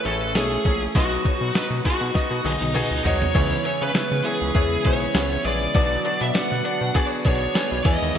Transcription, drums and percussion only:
0.05 closed hi-hat medium
0.35 snare loud
0.35 closed hi-hat medium
0.65 kick loud
0.65 closed hi-hat medium
0.95 kick loud
0.95 closed hi-hat medium
1.25 kick medium
1.25 closed hi-hat medium
1.55 snare loud
1.55 closed hi-hat medium
1.85 kick medium
1.85 closed hi-hat medium
2.15 kick medium
2.15 snare soft
2.15 closed hi-hat medium
2.45 closed hi-hat medium
2.45 high tom medium
2.62 high tom medium
2.76 closed hi-hat medium
2.76 mid tom medium
3.05 closed hi-hat medium
3.05 floor tom medium
3.22 floor tom medium
3.35 kick loud
3.35 closed hi-hat medium
3.35 crash medium
3.65 closed hi-hat medium
3.95 snare loud
3.95 closed hi-hat medium
4.25 closed hi-hat medium
4.55 kick medium
4.55 closed hi-hat medium
4.85 kick medium
4.85 closed hi-hat medium
5.15 snare loud
5.15 closed hi-hat medium
5.45 open hi-hat medium
5.75 kick loud
5.75 closed hi-hat medium
6.05 closed hi-hat medium
6.35 snare loud
6.35 closed hi-hat medium
6.35 tambourine medium
6.65 closed hi-hat medium
6.95 kick medium
6.95 closed hi-hat medium
7.25 kick medium
7.25 closed hi-hat medium
7.55 snare loud
7.55 closed hi-hat medium
7.55 tambourine medium
7.85 kick loud
7.85 open hi-hat medium
8.15 closed hi-hat medium

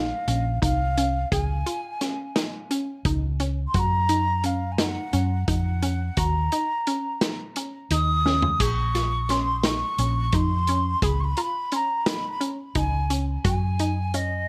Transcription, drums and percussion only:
0.28 closed hi-hat medium
0.63 kick medium
0.63 closed hi-hat medium
0.97 closed hi-hat medium
1.32 kick medium
1.32 closed hi-hat medium
1.66 closed hi-hat medium
2.01 snare soft
2.01 closed hi-hat medium
2.36 snare medium
2.36 closed hi-hat medium
2.71 closed hi-hat medium
3.05 kick medium
3.05 closed hi-hat medium
3.40 closed hi-hat medium
3.74 kick medium
3.74 closed hi-hat medium
4.09 closed hi-hat medium
4.44 closed hi-hat soft
4.78 snare medium
4.78 closed hi-hat medium
5.13 closed hi-hat medium
5.48 kick medium
5.48 closed hi-hat medium
5.82 closed hi-hat medium
6.17 kick medium
6.17 closed hi-hat medium
6.52 closed hi-hat soft
6.87 closed hi-hat soft
7.21 snare medium
7.21 closed hi-hat medium
7.56 closed hi-hat medium
7.91 closed hi-hat medium
8.26 snare medium
8.42 floor tom medium
8.60 kick loud
8.60 closed hi-hat medium
8.60 splash medium
8.95 snare soft
8.95 closed hi-hat soft
9.29 snare soft
9.29 closed hi-hat soft
9.63 snare loud
9.63 closed hi-hat medium
9.98 closed hi-hat medium
10.32 kick medium
10.32 closed hi-hat medium
10.67 closed hi-hat medium
11.02 kick loud
11.02 closed hi-hat medium
11.37 closed hi-hat soft
11.72 closed hi-hat soft
12.06 snare medium
12.06 closed hi-hat medium
12.41 closed hi-hat medium
12.75 kick medium
12.75 closed hi-hat medium
13.10 closed hi-hat medium
13.45 kick loud
13.45 closed hi-hat medium
13.79 closed hi-hat medium
14.14 closed hi-hat medium

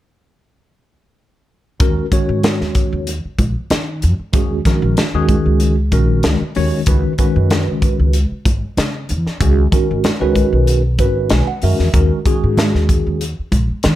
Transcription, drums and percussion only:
1.80 kick loud
1.80 closed hi-hat medium
1.80 muted conga soft
2.12 kick medium
2.12 closed hi-hat medium
2.12 muted conga soft
2.43 snare loud
2.43 closed hi-hat medium
2.43 high conga medium
2.61 snare soft
2.75 kick medium
2.75 closed hi-hat medium
3.07 closed hi-hat medium
3.07 muted conga soft
3.39 kick medium
3.39 closed hi-hat medium
3.39 high conga medium
3.70 snare loud
3.70 closed hi-hat medium
3.70 high conga medium
4.02 closed hi-hat medium
4.02 muted conga soft
4.33 kick loud
4.33 closed hi-hat medium
4.33 muted conga soft
4.65 kick medium
4.65 snare soft
4.65 closed hi-hat medium
4.65 muted conga soft
4.65 low conga medium
4.97 snare medium
4.97 closed hi-hat medium
4.97 high conga medium
5.28 kick medium
5.28 closed hi-hat soft
5.28 high conga medium
5.60 closed hi-hat medium
5.60 muted conga soft
5.92 kick medium
5.92 closed hi-hat soft
6.23 snare loud
6.23 closed hi-hat medium
6.23 high conga medium
6.55 open hi-hat medium
6.55 muted conga soft
6.86 kick loud
6.86 closed hi-hat medium
6.86 muted conga soft
7.18 kick medium
7.18 closed hi-hat medium
7.18 muted conga soft
7.50 snare loud
7.50 closed hi-hat medium
7.50 high conga medium
7.82 kick medium
7.82 closed hi-hat medium
8.13 closed hi-hat medium
8.13 muted conga soft
8.45 kick medium
8.45 closed hi-hat medium
8.45 high conga medium
8.77 snare loud
8.77 closed hi-hat medium
8.77 high conga medium
9.09 closed hi-hat medium
9.09 muted conga soft
9.27 snare soft
9.41 kick loud
9.41 closed hi-hat medium
9.41 muted conga soft
9.72 kick medium
9.72 closed hi-hat medium
9.72 muted conga soft
9.72 low conga medium
10.04 snare loud
10.04 closed hi-hat medium
10.04 high conga medium
10.35 kick medium
10.35 closed hi-hat medium
10.35 high conga soft
10.67 closed hi-hat medium
10.67 muted conga soft
10.98 kick medium
10.98 closed hi-hat medium
11.30 snare loud
11.30 closed hi-hat medium
11.30 high conga medium
11.62 open hi-hat medium
11.62 muted conga soft
11.79 snare soft
11.94 kick loud
11.94 closed hi-hat medium
11.94 muted conga soft
12.25 kick medium
12.25 closed hi-hat medium
12.25 muted conga soft
12.57 snare loud
12.57 closed hi-hat medium
12.57 high conga medium
12.75 snare soft
12.89 kick medium
12.89 closed hi-hat medium
13.21 closed hi-hat medium
13.21 muted conga soft
13.52 kick medium
13.52 closed hi-hat medium
13.52 high conga medium
13.83 snare loud
13.83 closed hi-hat medium
13.83 high conga medium

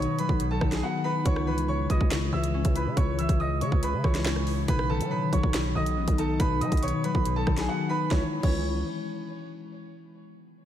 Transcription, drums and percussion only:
0.02 closed hi-hat medium
0.19 closed hi-hat medium
0.29 kick loud
0.40 closed hi-hat medium
0.61 kick loud
0.61 cross-stick loud
0.72 snare medium
0.72 closed hi-hat medium
1.26 kick loud
1.26 closed hi-hat medium
1.36 cross-stick loud
1.58 closed hi-hat medium
1.90 kick medium
1.90 closed hi-hat medium
2.01 kick loud
2.11 snare loud
2.11 clap medium
2.11 closed hi-hat loud
2.44 closed hi-hat medium
2.65 kick loud
2.65 closed hi-hat medium
2.76 closed hi-hat medium
2.97 kick loud
2.97 closed hi-hat medium
3.19 closed hi-hat medium
3.29 kick loud
3.29 closed hi-hat medium
3.61 closed hi-hat medium
3.72 kick loud
3.83 closed hi-hat medium
4.04 kick loud
4.04 cross-stick loud
4.15 snare medium
4.15 closed hi-hat medium
4.25 snare loud
4.25 clap loud
4.36 cross-stick medium
4.47 open hi-hat medium
4.68 kick loud
4.68 closed hi-hat medium
4.79 cross-stick loud
5.01 closed hi-hat medium
5.33 kick medium
5.33 closed hi-hat medium
5.43 kick loud
5.54 snare loud
5.54 clap medium
5.54 closed hi-hat loud
5.86 closed hi-hat medium
6.08 kick loud
6.08 closed hi-hat medium
6.18 closed hi-hat medium
6.40 kick loud
6.40 closed hi-hat medium
6.61 closed hi-hat medium
6.72 kick loud
6.72 closed hi-hat medium
6.77 closed hi-hat medium
6.83 closed hi-hat medium
6.88 closed hi-hat medium
7.04 closed hi-hat medium
7.15 kick loud
7.25 closed hi-hat medium
7.47 kick loud
7.47 cross-stick loud
7.57 snare medium
7.57 closed hi-hat medium
8.11 kick loud
8.11 snare medium
8.43 kick loud
8.43 crash medium

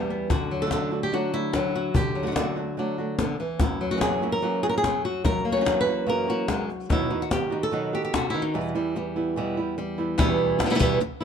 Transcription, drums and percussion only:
0.10 cajon slap soft
0.30 cajon bass medium
0.30 cajon slap soft
0.71 cajon slap medium
1.53 cajon slap medium
1.95 cajon bass medium
2.36 cajon slap medium
3.19 cajon slap medium
3.39 cajon slap soft
3.60 cajon bass medium
3.60 cajon slap soft
4.01 cajon slap medium
4.84 cajon slap medium
5.25 cajon bass medium
5.25 cajon slap soft
5.66 cajon slap medium
6.48 cajon slap medium
6.69 cajon slap soft
6.90 cajon bass medium
6.90 cajon slap soft
7.31 cajon slap medium
7.73 cajon slap soft
8.14 cajon slap medium
10.19 cajon bass medium
10.19 cajon slap soft
10.60 cajon slap medium
10.81 cajon bass medium

